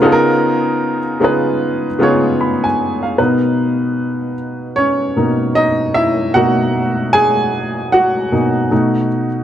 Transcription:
0.02 C#3 B3 D#4 F4 G#4
0.06 A4
0.12 A#4
1.20 C#3 B3 D#4 F4 G#4
1.24 B4
1.99 C#3 B3 D#4 F4 G#4
2.03 C#5
2.41 B5
2.64 G#5
3.03 F5
3.18 B2 B3 D#4 A#4 B4
4.76 C#4 C#5
5.16 B2 A#3 D#4
5.55 D#4 D#5
5.94 E4 E5
6.34 B2 A#3 D#4 F#4 F#5
7.13 G#4 G#5
7.92 F#4 F#5
8.32 B2 A#3 D#4
8.71 B2 A3 D#4

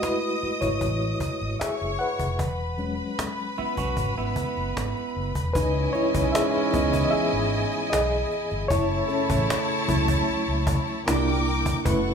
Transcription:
Already playing: G#3 A3 E4 F#4 D#5 D#6
0.02 E4 B4, cajon slap
0.22 cajon slap
0.41 muted fingered electric bass stroke, cajon slap
0.61 G#1 E4 C#5, cajon bass
0.81 A1, cajon bass, cajon slap
1.02 cajon slap
1.20 cajon bass
1.40 G#1, cajon slap
1.60 G#4 C#5 E5 C#6, muted fingered electric bass stroke, cajon slap
1.80 F#1, cajon slap
1.99 B4 F#5, cajon slap
2.19 F1, cajon bass
2.39 E1 B4 B5, cajon bass
2.58 cajon slap
2.77 F#3 G#3 C#4, cajon slap
2.99 cajon slap
3.19 cajon slap
3.38 cajon slap
3.57 B3 E4, muted fingered electric bass stroke, cajon slap
3.77 B1 C#4 F#4, cajon bass
3.97 G#1, cajon bass, cajon slap
4.17 G#1 B3 E4, cajon slap
4.36 cajon bass
4.56 F#1, cajon slap
4.77 G#1, cajon slap
4.96 cajon slap
5.16 F#1
5.35 E1, cajon bass
5.54 C#2 G#2 E3 C#4 D#4 E4 B4 D#5 G#5, cajon bass
5.93 E4 C#5, cajon slap
6.15 B1, cajon bass
6.32 G#4 E5, cajon slap
6.55 cajon slap
6.73 C#2 E3 B3 D#5, cajon bass
6.93 cajon bass
7.05 D#5
7.11 G#4 E5, muted fingered electric bass stroke, cajon slap
7.33 G#1, cajon slap
7.53 cajon slap
7.72 cajon slap
7.90 B1 G#4 D#5, cajon slap
8.31 cajon slap
8.50 G1, cajon slap
8.68 F#1 C#3 A3 E4 C#5 A5, cajon bass
9.08 C#4 A4, cajon slap
9.30 A1, cajon bass
9.50 cajon slap
9.70 cajon slap
9.88 C#2 F#3 A3 E4, cajon bass
10.08 cajon bass
10.28 muted fingered electric bass stroke, cajon slap
10.48 C#2, cajon slap
10.67 cajon bass
10.87 cajon slap
11.06 C2 A#2 G3 A#3 D4 E4 A#4 G5 D6, cajon slap
11.46 cajon slap
11.66 cajon bass
11.85 F#1 B2 A3 C#4 E4 A4 B4 F#5 C#6, cajon bass

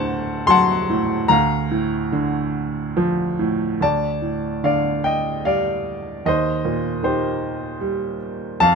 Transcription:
Already playing: D2 A2 D3 C5 F#5 A5 A#5
0.47 F#3 F#5 A5 C6
0.90 A2
1.28 D2 F5 A#5
1.71 A2
2.12 D3
2.97 F3
3.39 A2
3.81 D2 D5 A5
4.22 A2
4.64 D3 D5 F5
5.04 D#5 G5
5.45 G3 D5 F5
6.26 D#2 C5 D#5
6.65 A#2
7.03 D#3 G4 C5
7.81 G3
8.60 F2 F5 A5

